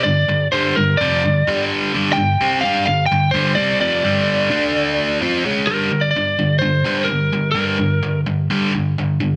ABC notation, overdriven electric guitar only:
X:1
M:4/4
L:1/8
Q:1/4=128
K:Gm
V:1 name="Overdriven electric guitar" clef=bass
[G,,D,] [G,,D,] [G,,D,G,] [G,,D,] [F,,C,F,] [G,,D,] [G,,D,G,]2 | [G,,D,G,] [G,,D,] [C,G,C] [G,DG] [G,,D,] [G,,D,] [G,,D,G,] [C,G,C] | [F,,C,F,] [G,,D,G,]2 [D,A,D]3 [^E,^B,^E] [^C,^G,^C] | [G,,D,G,] [G,,D,] [G,,D,] [G,,D,] [G,,D,] [G,,D,G,] [G,,D,] [G,,D,] |
[G,,D,G,] [G,,D,] [G,,D,] [G,,D,] [G,,D,G,] [G,,D,] [G,,D,] [G,,D,] |]